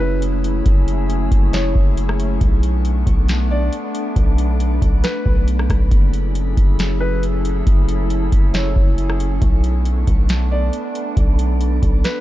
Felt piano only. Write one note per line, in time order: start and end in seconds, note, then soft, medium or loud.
0.00 0.21 B4 medium
1.53 2.37 C#5 medium
3.51 3.72 D5 medium
5.04 5.45 B4 medium
7.00 7.21 B4 medium
8.54 9.38 C#5 medium
10.52 10.72 D5 medium
12.04 12.21 B4 medium